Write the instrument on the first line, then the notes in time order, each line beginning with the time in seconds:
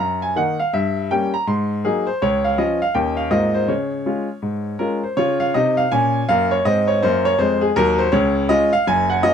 upright piano
0.00 F#2 A#5
0.22 G#5
0.36 D#3 A#3 D#4 F#5
0.60 F5
0.73 G2 E5
1.11 G3 A#3 C#4 G5
1.34 A#5
1.47 G#2 C6
1.85 F#3 A#3 D#4 G#4
2.07 C5
2.22 C#2 C#5
2.44 F5
2.58 F3 C#4 F4 D#5
2.82 F5
2.95 D#2 A#3 C#4 D#4 G5
3.17 F5
3.30 G#2 A#3 C4 F4 D#5
3.54 C5
3.68 C#3 C#5
4.06 G#3 C#4 F4
4.42 G#2
4.79 G#3 C#4 F4 A#4
5.04 C5
5.17 C#3 F4 C#5
5.40 F5
5.54 C3 D#4 D#5
5.77 F5
5.92 A#2 C#4 G#5
6.29 F#2 A#3 F5
6.51 C#5
6.65 G#2 C4 D#5
6.88 C#5
7.03 F#2 A#3 C5
7.25 C#5
7.38 F2 G#3 C5
7.61 G#4
7.76 D#2 F#3 A#4
7.98 C5
8.12 C#2 C#3 C#5
8.49 G#3 C#4 F4 D#5
8.73 F5
8.87 F#1 F#2 G#5
9.10 F#5
9.23 A#3 C#4 F4 D#5